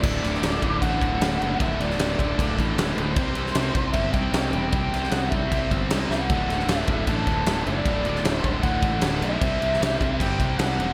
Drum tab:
CC |x-x-x-x-x-x-x-x-|x-x-x-x-x-x-x-x-|x-x-x-x-x-x-x-x-|x-x-x-x-x-x-x---|
SD |--ooo-------o---|---oo-------o---|---oo-------o---|--ooo-------o-o-|
BD |o-----o-o-o-----|o-----o-o-o-----|o-----o-o-o-----|o-----o-o-o-----|

CC |x-x-x-x-x-x-x-x-|x-x-x-x-x-x-x-x-|x-x-x-x-x-x-x-x-|
SD |--ooo-------o---|---oo-------o---|---oo-------o---|
BD |o-----o-o-o-----|o-----o-o-o-----|o-----o-o-o-----|